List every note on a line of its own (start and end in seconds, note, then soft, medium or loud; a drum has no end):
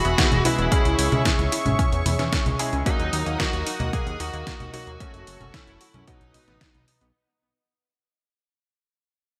0.00 0.42 G#3 medium
0.00 0.42 B3 medium
0.00 0.42 E4 medium
0.00 0.42 F#4 medium
0.00 0.45 F#4 loud
0.00 2.82 G#4 medium
0.00 2.82 E5 medium
0.00 0.68 F#5 medium
0.00 0.70 B5 medium
0.05 0.15 E1 medium
0.05 0.15 B3 medium
0.05 closed hi-hat soft
0.18 0.29 B3 medium
0.18 kick loud
0.18 snare loud
0.18 closed hi-hat medium
0.32 0.42 E1 medium
0.32 closed hi-hat soft
0.32 high conga medium
0.45 0.68 C#3 medium
0.45 0.68 G#3 medium
0.45 0.68 B3 medium
0.45 0.58 E4 medium
0.45 0.68 E4 medium
0.45 1.21 E4 medium
0.45 0.68 F#4 loud
0.45 open hi-hat loud
0.45 high conga medium
0.58 0.69 E1 medium
0.58 0.69 B3 medium
0.58 closed hi-hat soft
0.72 2.56 C#3 medium
0.72 2.56 G#3 medium
0.72 2.56 C#4 medium
0.72 0.82 C#4 medium
0.72 2.56 E4 medium
0.72 2.56 G#4 medium
0.72 2.84 C#5 medium
0.72 2.84 C#6 loud
0.72 kick loud
0.72 closed hi-hat medium
0.85 0.96 C#2 medium
0.85 closed hi-hat soft
0.99 1.09 C#2 loud
0.99 1.11 E4 medium
0.99 open hi-hat loud
1.12 1.22 C#2 medium
1.12 1.22 C#4 medium
1.12 closed hi-hat soft
1.12 high conga medium
1.25 1.36 C#4 medium
1.25 kick loud
1.25 snare loud
1.25 closed hi-hat medium
1.39 1.49 C#2 medium
1.39 closed hi-hat soft
1.52 1.65 E4 medium
1.52 open hi-hat loud
1.66 1.76 G#1 medium
1.66 1.76 C#4 medium
1.66 closed hi-hat soft
1.66 high conga medium
1.79 1.89 C#4 medium
1.79 kick loud
1.79 closed hi-hat medium
1.92 2.03 E2 medium
1.92 closed hi-hat soft
2.06 2.16 E2 loud
2.06 2.19 E4 medium
2.06 open hi-hat loud
2.06 high conga medium
2.19 2.30 E2 medium
2.19 2.30 C#4 medium
2.19 snare soft
2.19 closed hi-hat soft
2.33 2.43 C#4 medium
2.33 kick loud
2.33 snare loud
2.33 closed hi-hat medium
2.46 2.56 C#2 medium
2.46 closed hi-hat soft
2.46 high conga medium
2.59 2.82 G#3 medium
2.59 2.82 C#4 medium
2.59 2.82 E4 medium
2.59 2.72 E4 medium
2.59 2.82 G#4 loud
2.59 open hi-hat loud
2.73 2.83 C#2 medium
2.73 2.83 C#4 medium
2.73 closed hi-hat soft
2.86 4.70 F#3 medium
2.86 4.70 A#3 medium
2.86 2.97 A#3 medium
2.86 3.39 D#4 medium
2.86 4.70 D#4 medium
2.86 4.70 F#4 loud
2.86 4.98 A#4 medium
2.86 4.98 D#5 medium
2.86 7.11 F#5 medium
2.86 4.98 D#6 medium
2.86 kick loud
2.86 closed hi-hat medium
3.00 3.10 D#2 medium
3.00 closed hi-hat soft
3.13 3.23 D#2 loud
3.13 3.26 D#4 medium
3.13 open hi-hat loud
3.26 3.37 D#2 medium
3.26 3.37 A#3 medium
3.26 closed hi-hat soft
3.40 3.50 A#3 medium
3.40 3.90 F#4 loud
3.40 kick loud
3.40 snare loud
3.40 closed hi-hat medium
3.53 3.64 D#2 medium
3.53 closed hi-hat soft
3.67 3.79 D#4 medium
3.67 open hi-hat loud
3.80 3.90 D#2 medium
3.80 3.90 A#3 medium
3.80 closed hi-hat soft
3.80 high conga medium
3.93 4.04 A#3 medium
3.93 4.21 G#4 loud
3.93 kick loud
3.93 closed hi-hat medium
4.07 4.17 D#2 medium
4.07 closed hi-hat soft
4.20 4.31 D#2 loud
4.20 4.33 D#4 medium
4.20 4.70 F#4 loud
4.20 open hi-hat loud
4.33 4.44 D#2 medium
4.33 4.44 A#3 medium
4.33 closed hi-hat soft
4.47 4.57 A#3 medium
4.47 kick loud
4.47 snare loud
4.47 closed hi-hat medium
4.60 4.71 D#2 medium
4.60 closed hi-hat soft
4.60 high conga medium
4.74 4.96 F#3 medium
4.74 4.96 A#3 medium
4.74 4.96 D#4 medium
4.74 4.86 D#4 medium
4.74 4.96 F#4 loud
4.74 5.54 F#4 loud
4.74 open hi-hat loud
4.74 high conga medium
4.87 4.98 D#2 medium
4.87 4.97 A#3 medium
4.87 closed hi-hat soft
5.00 6.06 F#3 medium
5.00 6.06 A3 medium
5.00 5.11 C#4 medium
5.00 6.06 C#4 medium
5.00 6.06 F#4 medium
5.00 6.06 A4 medium
5.00 6.06 C#5 medium
5.00 6.07 C#6 medium
5.00 kick loud
5.00 closed hi-hat loud
5.14 5.24 F#1 medium
5.14 closed hi-hat soft
5.27 5.38 F#1 loud
5.27 5.40 F#4 medium
5.27 open hi-hat loud
5.41 5.51 F#1 medium
5.41 5.51 C#4 medium
5.41 closed hi-hat soft
5.41 high conga medium
5.54 5.64 C#4 medium
5.54 6.04 E4 medium
5.54 kick loud
5.54 snare loud
5.54 closed hi-hat loud
5.67 5.78 F#1 medium
5.67 closed hi-hat soft
5.81 5.94 F#4 medium
5.81 open hi-hat loud
5.94 6.05 F#2 medium
5.94 6.05 C#4 medium
5.94 closed hi-hat soft
5.94 high conga medium
6.08 6.88 B2 medium
6.08 6.88 F#3 medium
6.08 6.18 B3 medium
6.08 6.88 B3 medium
6.08 6.88 D#4 medium
6.08 6.84 D#4 medium
6.08 6.88 F#4 loud
6.08 7.14 B4 medium
6.08 7.14 D#5 medium
6.08 7.14 D#6 medium
6.08 kick loud
6.08 closed hi-hat loud
6.21 6.31 B1 medium
6.21 closed hi-hat soft
6.34 6.45 B1 medium
6.34 6.47 D#4 medium
6.34 open hi-hat loud
6.34 high conga medium
6.48 6.58 A1 medium
6.48 6.58 B3 medium
6.48 snare soft
6.48 closed hi-hat soft
6.61 6.72 B3 medium
6.61 kick loud
6.61 snare loud
6.61 closed hi-hat medium
6.74 6.85 B1 medium
6.74 closed hi-hat soft
6.74 high conga medium
6.88 7.01 D#4 medium
6.88 open hi-hat loud
7.01 7.12 B1 medium
7.01 7.12 B3 medium
7.01 closed hi-hat soft